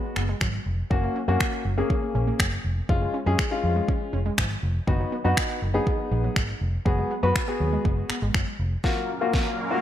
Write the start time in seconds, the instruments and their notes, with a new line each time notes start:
Already playing: grand piano G#3 B3 F#4
0.16 fingered electric bass F#1, synth arpeggio sound B3, finger snap
0.29 synth arpeggio sound G#3
0.41 fingered electric bass G#1, synth arpeggio sound F#3, finger snap, kick
0.66 fingered electric bass F1
0.90 fingered electric bass F#1, synth arpeggio sound F#3, grand piano A#3 C#4 F#4, kick
1.04 synth arpeggio sound A#3
1.16 synth arpeggio sound C#4
1.28 fingered electric bass F#2, grand piano A#3 C#4 F#4, synth arpeggio sound F#4
1.41 finger snap, kick
1.65 fingered electric bass F#1, synth arpeggio sound F#3
1.78 grand piano A#3 C#4 G#4, synth arpeggio sound A#3
1.90 synth arpeggio sound C#4, kick
2.15 fingered electric bass A#1, synth arpeggio sound C#4
2.27 synth arpeggio sound A#3
2.40 fingered electric bass F#1, synth arpeggio sound F#3, finger snap, kick
2.64 fingered electric bass F1
2.89 fingered electric bass F#1, synth arpeggio sound F3, grand piano G#3 C#4 F4, kick
3.02 synth arpeggio sound G#3
3.14 synth arpeggio sound C#4
3.26 fingered electric bass F#2, grand piano G#3 C#4 G#4, synth arpeggio sound F4
3.39 finger snap, kick
3.51 grand piano G#3 C#4 F4
3.63 fingered electric bass F2, synth arpeggio sound F3
3.76 synth arpeggio sound G#3
3.88 synth arpeggio sound C#4, kick
4.13 fingered electric bass F1, synth arpeggio sound C#4
4.26 synth arpeggio sound G#3
4.38 fingered electric bass G#1, synth arpeggio sound F3, finger snap, kick
4.63 fingered electric bass F1
4.87 fingered electric bass F#1, synth arpeggio sound D#3, grand piano B3 D#4 F#4, kick
5.00 synth arpeggio sound F#3
5.12 synth arpeggio sound B3
5.24 fingered electric bass F#2, grand piano B3 D#4 F#4, synth arpeggio sound D#4
5.37 finger snap, kick
5.62 fingered electric bass F#1, synth arpeggio sound D#3
5.74 synth arpeggio sound F#3, grand piano B3 D#4 G#4
5.87 synth arpeggio sound B3, kick
6.11 fingered electric bass A#1, synth arpeggio sound B3
6.24 synth arpeggio sound F#3
6.36 fingered electric bass G#1, synth arpeggio sound D#3, finger snap, kick
6.61 fingered electric bass F1
6.85 fingered electric bass F#1, synth arpeggio sound F#3, grand piano B3 F#4 G#4, kick
6.98 synth arpeggio sound G#3
7.11 synth arpeggio sound B3
7.23 fingered electric bass F#2, grand piano B3 F#4 B4, synth arpeggio sound F#4
7.36 finger snap, kick
7.48 grand piano B3 F#4 G#4
7.60 fingered electric bass D#2, synth arpeggio sound F#3
7.73 synth arpeggio sound G#3
7.85 fingered electric bass F#1, synth arpeggio sound B3, kick
8.10 synth arpeggio sound B3, finger snap, muted fingered electric bass stroke
8.22 fingered electric bass G#1, synth arpeggio sound G#3
8.34 fingered electric bass F#1, synth arpeggio sound F#3, finger snap, kick
8.59 fingered electric bass F1
8.84 supersaw synth F#3 A#3 C#4 A#4 F5, grand piano A#3 F4 F#4, kick, snare, riser
9.21 grand piano A#3 F4 F#4
9.34 kick, snare
9.71 grand piano A#3 F4 F#4